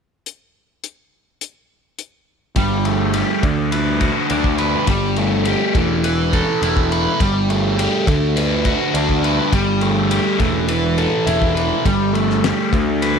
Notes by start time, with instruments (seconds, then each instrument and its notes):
0.26 closed hi-hat
0.84 closed hi-hat
1.41 closed hi-hat
1.99 closed hi-hat
2.56 picked electric bass G1, distorted electric guitar G3, kick, ride
2.85 distorted electric guitar A3, ride
3.14 distorted electric guitar G4, ride
3.43 picked electric bass D2, distorted electric guitar D3, kick, ride
3.72 distorted electric guitar B4, ride
4.01 distorted electric guitar F#4, kick, ride
4.30 picked electric bass D2, distorted electric guitar D4, ride
4.44 kick
4.58 distorted electric guitar B4, ride
4.87 picked electric bass G1, distorted electric guitar G3, kick, ride
5.16 distorted electric guitar A3, ride
5.45 distorted electric guitar G4, ride
5.75 picked electric bass E1, distorted electric guitar E3, kick, ride
6.04 distorted electric guitar B4, ride
6.33 distorted electric guitar A4, kick, ride
6.62 picked electric bass E1, distorted electric guitar E4, ride
6.77 kick
6.92 distorted electric guitar B4, ride
7.20 picked electric bass G1, distorted electric guitar G3, kick, ride
7.49 distorted electric guitar A3, ride
7.78 distorted electric guitar G4, ride
8.07 picked electric bass D2, distorted electric guitar D3, kick, ride
8.36 distorted electric guitar B4, ride
8.65 distorted electric guitar F#4, kick, ride
8.94 picked electric bass D2, distorted electric guitar D4, ride
9.09 kick
9.24 distorted electric guitar B4, ride
9.52 picked electric bass G1, distorted electric guitar G3, kick, ride
9.81 distorted electric guitar A3, ride
10.10 distorted electric guitar G4, ride
10.39 picked electric bass E1, distorted electric guitar E3, kick, ride
10.68 distorted electric guitar B4, ride
10.98 distorted electric guitar A4, ride
11.26 picked electric bass E1, distorted electric guitar E4, ride
11.42 kick
11.55 distorted electric guitar B4, ride
11.85 picked electric bass G1, distorted electric guitar G3, kick, ride
12.13 distorted electric guitar A3, ride
12.30 snare
12.43 distorted electric guitar G4, snare, ride
12.72 picked electric bass D2, distorted electric guitar D3, kick, ride
13.02 distorted electric guitar B4, ride